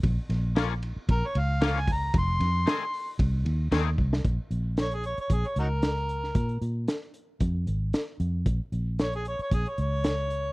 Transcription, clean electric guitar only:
X:1
M:4/4
L:1/8
Q:"Swing 16ths" 1/4=114
K:Bbm
V:1 name="Clean electric guitar"
z2 [F,B,DF] z3 [F,B,DF] z | z2 [E,=A,C^G] z3 [E,A,CG] z | z8 | z8 |
z8 |]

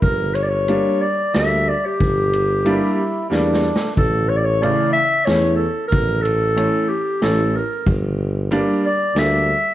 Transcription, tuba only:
X:1
M:3/4
L:1/8
Q:1/4=92
K:none
V:1 name="Tuba" clef=bass
G,,,4 D,,2 | G,,,4 E,,2 | A,,,4 E,,2 | A,,,4 A,,,2 |
G,,,4 D,,2 |]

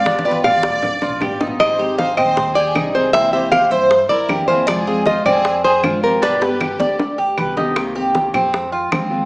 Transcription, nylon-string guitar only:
X:1
M:4/4
L:1/8
Q:1/4=156
K:Cm
V:1 name="Nylon-string guitar"
f d f4- f z | e2 f e2 d2 c | =e e f e2 d2 c | d2 e d2 c2 B |
=B6 z2 | z8 |]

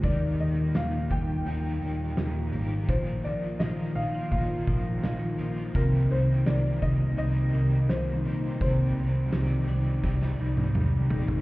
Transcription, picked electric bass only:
X:1
M:4/4
L:1/8
Q:1/4=84
K:Cm
V:1 name="Picked electric bass" clef=bass
E,, E,, E,, E,, E,, E,, E,, A,,, | B,,, B,,, B,,, B,,, B,,, B,,, B,,, B,,, | C,, C,, C,, C,, C,, C,, C,, B,,, | C,, C,, C,, C,, C,, C,, C,, B,,, |]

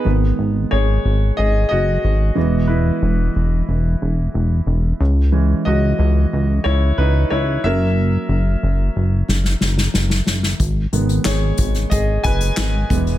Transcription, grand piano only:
X:1
M:4/4
L:1/8
Q:1/4=91
K:G#m
V:1 name="Grand piano"
z2 [Gc]2 [Gd] [Fd]3 | [EB]2 z6 | z [Fd]3 [Ec] [DB] [Ec] [Ae]- | [Ae]4- [Ae] z3 |
z2 [Gc]2 [Gd] [Bg]3 |]
V:2 name="Grand piano" clef=bass
[D,G,B,]6- [D,G,B,] [E,G,B,]- | [E,G,B,]6- [E,G,B,] z | [E,G,C] z6 [F,A,C]- | [F,A,C]6- [F,A,C] z |
z [D,G,B,]6 [E,G,B,] |]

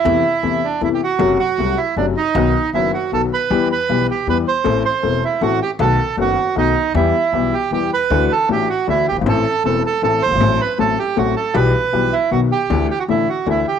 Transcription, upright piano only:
X:1
M:3/4
L:1/16
Q:1/4=156
K:Em
V:1 name="Upright piano" clef=bass
[E,,C,E,A,E]2 z2 [E,,C,E,A,E]2 z2 [E,,C,E,A,E]2 z2 | [F,,C,F,A,F]2 z2 [C,,C,F,A,F]2 z2 [F,,C,F,A,F]2 z2 | [B,,,B,,^D,F,B,F]2 z2 [F,,,F,,D,F,B,F]2 z2 [B,,,B,,D,F,B,F]2 z2 | [E,,E,G,B,G]2 z2 [B,,,B,,E,G,B,G]2 z2 [E,,E,G,B,G]2 z2 |
[A,,,A,,E,A,CA]2 z2 [E,,,E,,E,A,CA]2 z2 [A,,,A,,E,A,CA]2 z2 | [B,,,B,,^D,A,B,F]2 z2 [F,,,F,,D,A,B,F]2 z2 [B,,,B,,D,A,B,F]2 z2 | [E,,E,G,B,G]2 z2 [B,,,B,,E,G,B,G]2 z2 [E,,E,G,B,G]2 z2 | [D,,D,E,A,DF]2 z2 [A,,,A,,E,A,DF]2 z2 [D,,D,E,A,DF]2 z/2 F,,,/2 G,,,/2 ^G,,,/2 |
[A,,,A,,E,A,CA]2 z2 [E,,,E,,E,A,CA]2 z2 [A,,,A,,E,A,CA]2 z/2 F,,,/2 G,,,/2 ^G,,,/2 | [A,,,A,,F,A,CA]2 z2 [A,,,A,,F,A,CA]2 z2 [A,,,A,,F,A,CA]2 z2 | [B,,,B,,E,G,B,G]2 z2 [B,,,B,,E,G,B,G]2 z2 [B,,,B,,^D,F,B,F]2 z2 | [D,,D,E,A,E]2 z2 [A,,,A,,D,E,A,E]2 z2 [D,,D,E,A,E]2 z2 |]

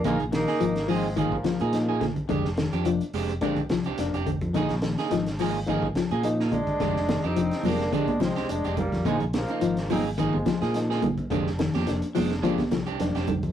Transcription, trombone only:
X:1
M:4/4
L:1/16
Q:"Swing 16ths" 1/4=106
K:Fdor
V:1 name="Trombone"
B,2 E4 C2 B,6 z2 | z16 | z12 z2 D2- | D3 E3 D2 D2 C2 D2 B,2 |
A,2 B,4 E2 A,6 z2 | z16 |]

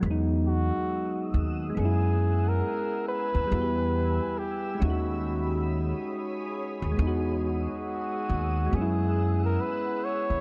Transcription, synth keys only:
X:1
M:4/4
L:1/8
Q:"Swing 16ths" 1/4=69
K:Elyd
V:1 name="Synth keys"
[F,G,B,D]4 [G,B,CE]4 | [=G,B,EF=G]3 [^G,CDF]4- [G,CDF] | [G,B,DF]4 [G,B,CE]4 |]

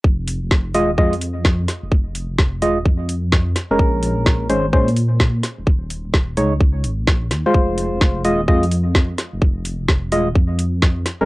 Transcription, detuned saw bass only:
X:1
M:4/4
L:1/16
Q:"Swing 16ths" 1/4=128
K:Fm
V:1 name="Detuned saw bass" clef=bass
F,,,3 F,,,3 E,,,2 F,,6 z F,,, | F,,,3 F,,,3 E,,,2 F,,6 z F,,, | B,,,3 B,,,3 A,,,2 B,,6 z E,,, | E,,,3 E,,,3 D,,4 A,,, B,,,3 E,, z |
F,,,3 F,,,3 E,,,2 F,,6 z F,,, | F,,,3 F,,,3 E,,,2 F,,6 z F,,, |]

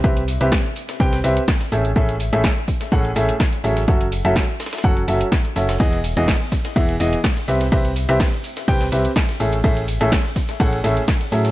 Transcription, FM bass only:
X:1
M:4/4
L:1/16
Q:"Swing 16ths" 1/4=125
K:Alyd
V:1 name="FM bass" clef=bass
=C,,3 C,, z4 C,,2 C,, z3 A,,,2 | A,,,3 A,,, z4 A,,,2 A,,, z3 A,,,2 | F,,,3 F,,, z4 F,,,2 F,,, z3 F,,,2 | E,,,3 E,,, z4 E,,,2 E,,, z3 =C,,2 |
=C,,3 C,, z4 C,,2 C,, z3 A,,,2 | A,,,3 A,,, z4 A,,,2 A,,, z3 A,,2 |]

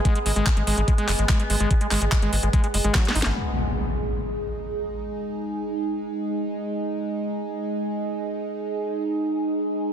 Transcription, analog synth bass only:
X:1
M:4/4
L:1/16
Q:1/4=145
K:G#m
V:1 name="Analog synth bass" clef=bass
z2 G,,, G,,, z G,,, G,,, G,,, z2 F,,, G,,, z2 G,,, G,,, | z2 G,,, G,,, z G,,, G,,, G,,, z2 F,,, G,,, z2 G,,, G,,, | z16 | z16 |
z16 | z16 |]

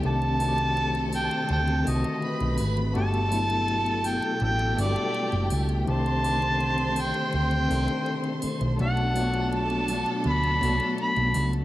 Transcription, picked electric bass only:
X:1
M:4/4
L:1/16
Q:1/4=82
K:Clyd
V:1 name="Picked electric bass" clef=bass
C,,6- C,, z D,,2 C,, z2 B,,, _A,,,2 | G,,,6- G,,, z A,,,2 G,,, z2 F,,, ^C,,2 | C,,6- C,, z D,,2 C,, z4 B,,, | B,,,6- B,,, z D,,2 C,, z2 B,,, ^C,,2 |]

